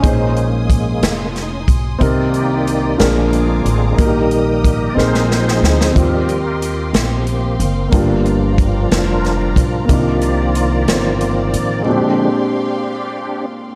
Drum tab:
HH |x-x-x-x-x-x-|x-x-x-x-x-x-|x-x-x-------|x-x-x-x-x-x-|
SD |------o-o---|------o-----|------oooooo|------o-----|
BD |o---o-----o-|o-----------|o---o-------|o-----------|

HH |x-x-x-x-x-x-|x-x-x-x-x-x-|------------|
SD |------o-o---|------o-----|------------|
BD |o---o-----o-|o-----------|------------|